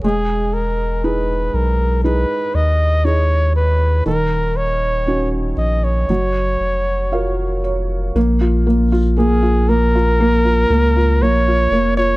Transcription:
<<
  \new Staff \with { instrumentName = "Flugelhorn" } { \time 4/4 \key ais \phrygian \tempo 4 = 59 gis'8 ais'8 b'8 ais'8 b'8 dis''8 cis''8 b'8 | ais'8 cis''8. r16 dis''16 cis''4.~ cis''16 r8 | r4 gis'8 ais'4. cis''8. cis''16 | }
  \new Staff \with { instrumentName = "Felt piano" } { \time 4/4 \key ais \phrygian << { r1 | r2. eis''8 cis''8 | r1 | } \\ { gis4 <dis' e' gis'>4 <dis' e' gis'>4 <dis' e' gis'>4 | dis4 <cis' dis' fis'>4 fis4 <eis' fis' ais'>4 | ais16 eis'16 ais16 eis'16 ais16 eis'16 ais16 eis'16 ais16 eis'16 ais16 eis'16 ais16 eis'16 ais16 eis'16 | } >> }
  \new Staff \with { instrumentName = "Sub bass" } { \clef bass \time 4/4 \key ais \phrygian e,,4. b,,8. r16 dis,4. | dis,,4. ais,,8 fis,,8 eis,,4. | ais,,2~ ais,,8 cis,8 ais,,8 eis,,8 | }
>>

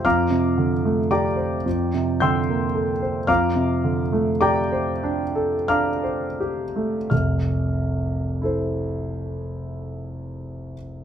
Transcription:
<<
  \new Staff \with { instrumentName = "Grand piano" } { \time 3/4 \key f \major \tempo 4 = 48 << { <f'' bes'' d''' f'''>4 <d'' g'' bes'' d'''>4 <g'' c''' e''' g'''>4 | <f'' bes'' d''' f'''>4 <d'' g'' bes'' d'''>4 <f'' bes'' d''' f'''>4 | f'''2. | } \\ { r2. | r2. | r4 <e' a' c''>2 | } >> }
  \new Staff \with { instrumentName = "Grand piano" } { \time 3/4 \key f \major f,16 c16 d16 a16 g'16 c''16 f,16 c16 d16 bes16 a'16 c''16 | f,16 c16 d16 a16 g'16 c''16 d'16 a'16 d'16 c''16 g'16 a16 | <f,, c,>2. | }
>>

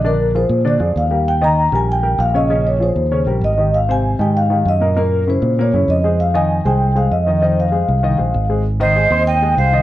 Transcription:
<<
  \new Staff \with { instrumentName = "Vibraphone" } { \time 4/4 \key f \minor \tempo 4 = 195 bes'4 c''4 d''4 f''4 | g''8 bes''4 aes''8 g''4 f''8 ees''8~ | ees''8 des''8 c''4. r8 ees''4 | f''8 aes''4 g''8 f''4 ees''4 |
bes'4 c''4 des''4 ees''4 | f''8 aes''4 g''4 f''8 ees''4 | c''8 f''2. r8 | \key aes \major r8 ees''4. g''4 f''4 | }
  \new Staff \with { instrumentName = "Flute" } { \time 4/4 \key f \minor r1 | r1 | r1 | r1 |
r1 | r1 | r1 | \key aes \major r8 c''4. ees''4 c''4 | }
  \new Staff \with { instrumentName = "Grand piano" } { \time 4/4 \key f \minor <d d' d''>4 <f f' aes'>4 <d d' d''>8 <f f' aes'>4 <g g' bes'>8~ | <g g' bes'>8 <ees ees' ees''>4 <g g' bes'>4 <g g' bes'>4 <des des' des''>8 | <des des' des''>4 <f f' aes'>4 <des des' des''>8 <g g' bes'>4 <ees ees' g'>8~ | <ees ees' g'>8 <c c' c''>4 <ees ees' g'>4 <ees ees' g'>4 <bes, bes bes'>8 |
<bes, bes bes'>4 <des des' fes'>4 <bes, bes bes'>8 <des des' fes'>4 <aes aes' c''>8~ | <aes aes' c''>8 <ees ees' ees''>4 <aes aes' c''>4 <aes aes' c''>4 <ees ees' ees''>8 | <ees ees' ees''>4 <aes aes' c''>4 <ees ees' ees''>8 <aes aes' c''>4 <aes aes' c''>8 | \key aes \major r8 <ees ees' ees''>8 <aes aes' aes''>8 <c' c'' c'''>4 <aes aes' aes''>4 <ees ees' ees''>8 | }
  \new Staff \with { instrumentName = "Fingered electric bass" } { \clef bass \time 4/4 \key f \minor bes,,4. bes,4 f,8 ees,4~ | ees,4. bes,,4. bes,,4~ | bes,,4. ees,4 bes,,8 aes,,4~ | aes,,4. aes,4. ges,4~ |
ges,4. bes,4 ges,8 f,4~ | f,4. c,4. f,4~ | f,4. c,4 bes,,8 aes,,4~ | \key aes \major aes,,4. ees,4. c,4 | }
>>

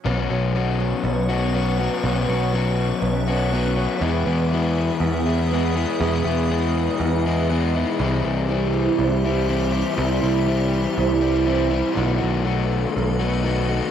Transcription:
<<
  \new Staff \with { instrumentName = "Ambient pad" } { \time 4/4 \key b \mixolydian \tempo 4 = 121 << { <b' cis'''>1~ | <b' cis'''>1 | <gis' dis'''>1~ | <gis' dis'''>1 |
<g' c'''>1~ | <g' c'''>1 | <a' b''>1 | } \\ { fis''1 | e''1 | e''1 | dis''1 |
e''1~ | e''1 | dis''1 | } >> }
  \new Staff \with { instrumentName = "Overdriven electric guitar" } { \time 4/4 \key b \mixolydian <b, fis b cis' fis'>8 <b cis' fis'>8 <fis b cis' fis'>4. <b cis' fis'>8 <fis b cis' fis'>8 <b cis' fis'>8 | <b, fis b cis' fis'>8 <b cis' fis'>8 <fis b cis' fis'>4. <b cis' fis'>8 <fis b cis' fis'>8 <b cis' fis'>8 | <e, b, e gis b e'>8 <e gis b e'>8 <e gis b e'>4. <e gis b e'>8 <e gis b e'>8 <e gis b e'>8 | <e, b, e gis b e'>8 <e gis b e'>8 <e gis b e'>4. <e gis b e'>8 <e gis b e'>8 <e gis b e'>8 |
<c e g c' e'>8 <g c' e'>8 <e g c' e'>4. <g c' e'>8 <e g c' e'>8 <g c' e'>8 | <c e g c' e'>8 <g c' e'>8 <e g c' e'>4. <g c' e'>8 <e g c' e'>8 <g c' e'>8 | <b, dis a b fis'>8 <a b fis'>8 <dis a b fis'>4. <a b fis'>8 <dis a b fis'>8 <a b fis'>8 | }
  \new Staff \with { instrumentName = "Twelve-string acoustic guitar" } { \time 4/4 \key b \mixolydian fis4 cis'8 fis8 b8 cis'8 b8 cis'8 | fis4 cis'8 fis8 b8 cis'8 b8 cis'8 | b4. b8 b4 b4 | b4. b8 b4 b8 dis'8 |
e4 e'8 e8 c'8 e'8 c'8 e'8 | e4 e'8 e8 c'8 e'8 c'8 e'8 | fis4 a8 fis8 fis8 a8 fis8 a8 | }
  \new Staff \with { instrumentName = "Clean electric guitar" } { \clef bass \time 4/4 \key b \mixolydian <b, fis b cis'>4 <b, fis b cis'>4 <b, fis b cis'>4 <b, fis b cis'>4 | <b, fis b cis'>4 <b, fis b cis'>4 <b, fis b cis'>4 <b, fis b cis'>4 | <e gis b>4 <e gis b>4 <e gis b>4 <e gis b>4 | <e gis b>4 <e gis b>4 <e gis b>4 <e gis b>4 |
<c g c' e'>4 <c g e'>4 <c g c' e'>4 <g c' e'>4 | <c g c' e'>4 <g c' e'>4 <c c' e'>4 <c g c' e'>4 | <b, fis a dis'>4 <fis a dis'>4 <b, fis a dis'>4 <b, fis a dis'>4 | }
  \new Staff \with { instrumentName = "Picked electric bass" } { \clef bass \time 4/4 \key b \mixolydian b,,8 b,,4. b,,2 | b,,8 b,,4. b,,2 | e,8 e,4. e,2 | e,8 e,4. e,2 |
c,8 c,4. c,2 | c,8 c,4. c,2 | b,,8 b,,4. b,,2 | }
>>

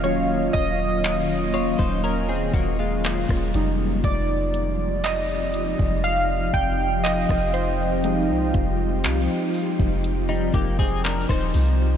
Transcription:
<<
  \new Staff \with { instrumentName = "Synth keys" } { \time 4/4 \key f \phrygian \tempo 4 = 60 << { des''8 ees''4 r2 r8 | d''4 ees''4 f''8 g''8 ees''8 c''8~ | c''4. r2 r8 | } \\ { <ges des' f'>4. r2 <g aes ees'>8 | r1 | <g aes ees'>1 | } >> }
  \new Staff \with { instrumentName = "Clean electric guitar" } { \time 4/4 \key f \phrygian r4. <f' des''>16 <ees' c''>16 <des' bes'>16 <c' aes'>16 <bes ges'>16 <aes f'>8. r8 | r1 | r2 r16 <g ees'>16 <bes g'>16 <c' aes'>16 <d' bes'>16 <ees' c''>8. | }
  \new Staff \with { instrumentName = "Ambient pad" } { \time 4/4 \key f \phrygian <ees ges bes des' f'>2.~ <ees ges bes des' f'>8 <f c' ees' f' g'>8~ | <f c' ees' f' g'>1~ | <f c' ees' f' g'>1 | }
  \new Staff \with { instrumentName = "808-style bass" } { \clef bass \time 4/4 \key f \phrygian ees,,8 ees,,4~ ees,,16 ees,,8. ees,,8. ees,,16 f,,8 | f,,4.~ f,,16 f,,8. f,,8. f,,8.~ | f,,16 c,16 f,,8 c,16 r8 f,,8. f,,8. ees,,16 c,8 | }
  \new DrumStaff \with { instrumentName = "Drums" } \drummode { \time 4/4 hh8 <hh bd>8 <hc hh>8 hh16 bd16 hh8 <hh bd>8 <hc hh>16 <bd ss>16 hh8 | <hh bd>8 hh8 <hc hh>8 hh16 bd16 hh8 <hh bd>8 <hc hh>16 <bd ss>16 hh8 | hh8 <hh bd>8 <hc hh>8 hho16 bd16 hh8 <hh bd>16 bd16 <hc hh>16 <bd ss>16 hho8 | }
>>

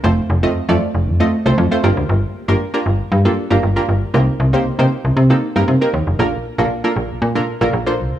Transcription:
<<
  \new Staff \with { instrumentName = "Synth pluck" } { \time 4/4 \key bes \major \tempo 4 = 117 <a c' f' a' c''>8 r16 <a c' f' a' ees''>8 <a c' f' a' d''>8. r16 <a c' f' a' ees''>8 <a c' f' a' c''>8 <a c' f' a' c''>16 <bes d' f' g' bes'>8~ | <bes d' f' g' bes'>8 r16 <bes d' f' g' bes'>8 <bes d' f' g' bes'>8. r16 <bes d' f' g' a'>8 <bes d' f' g' bes'>8 <bes d' f' g' bes'>8. | <bes c' ees' g' bes'>8 r16 <bes c' ees' g' c''>8 <bes c' ees' g' c''>8. r16 <bes c' ees' g' a'>8 <bes c' ees' g' bes'>8 <bes c' ees' g' bes'>8. | <bes d' f' a' bes'>8 r16 <bes d' f' a' bes'>8 <bes d' f' a' bes'>8. r16 <bes d' f' a' bes'>8 <bes d' f' a' bes'>8 <bes d' f' a' c''>8. | }
  \new Staff \with { instrumentName = "FM bass" } { \clef bass \time 4/4 \key bes \major f,,8 f,,8 f,16 f,16 r16 f,,16 f,8 r16 c,16 f,16 r16 g,,16 d,16 | g,,8 r16 g,,16 r8 g,,8 g,8 r16 g,,16 g,,8 g,,8 | c,8 c,8 c16 c16 r16 c,16 c8 r16 g,16 c16 r16 ees,16 f,,16 | bes,,8 r16 bes,,16 r8 bes,,8 bes,8 r16 bes,,16 bes,,8 c,8 | }
>>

